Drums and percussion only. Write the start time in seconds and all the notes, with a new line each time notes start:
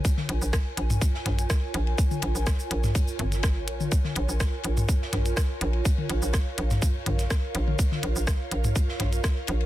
0.05 kick, ride, shaker
0.17 snare, high tom
0.29 closed hi-hat, ride
0.42 shaker
0.53 kick, cross-stick, snare, closed hi-hat, ride, shaker
0.77 closed hi-hat, ride
0.90 mid tom, shaker
1.01 kick, ride, shaker
1.14 snare
1.26 snare, closed hi-hat, mid tom, ride
1.39 closed hi-hat, shaker
1.50 kick, cross-stick, snare, ride, shaker
1.74 closed hi-hat, ride
1.87 ride
1.98 kick, ride, shaker
2.11 high tom, shaker
2.22 closed hi-hat, ride
2.35 shaker
2.46 kick, cross-stick, snare, closed hi-hat, ride, shaker
2.59 shaker
2.71 closed hi-hat, ride
2.84 snare, mid tom, shaker
2.95 kick, ride, shaker
3.08 shaker
3.19 closed hi-hat, mid tom, high tom, ride
3.32 snare, closed hi-hat, shaker
3.43 kick, cross-stick, snare, ride, shaker
3.67 closed hi-hat, ride
3.80 high tom, shaker
3.91 kick, ride, shaker
4.04 snare, high tom
4.15 closed hi-hat, ride
4.29 shaker
4.40 kick, cross-stick, snare, closed hi-hat, ride, shaker
4.63 closed hi-hat, ride
4.77 mid tom, shaker
4.89 kick, ride, shaker
5.02 snare
5.12 snare, closed hi-hat, mid tom, ride
5.26 closed hi-hat, shaker
5.36 kick, cross-stick, snare, ride, shaker
5.61 closed hi-hat, ride
5.73 ride
5.85 kick, ride, shaker
5.98 high tom
6.10 closed hi-hat, ride
6.22 shaker
6.33 kick, cross-stick, snare, closed hi-hat, ride, shaker
6.58 closed hi-hat, ride
6.71 snare, mid tom, shaker
6.82 kick, ride, shaker
7.06 closed hi-hat, mid tom, high tom, ride
7.18 snare, closed hi-hat, shaker
7.30 kick, cross-stick, snare, ride, shaker
7.54 closed hi-hat, ride
7.68 high tom
7.79 kick, ride, shaker
7.92 snare, high tom
8.03 closed hi-hat, ride
8.16 shaker
8.27 kick, cross-stick, snare, closed hi-hat, ride, shaker
8.51 closed hi-hat, ride
8.64 mid tom, shaker
8.76 kick, ride, shaker
8.89 snare
8.99 snare, closed hi-hat, mid tom, ride
9.13 closed hi-hat, shaker
9.24 kick, cross-stick, snare, ride, shaker
9.47 closed hi-hat, ride
9.61 ride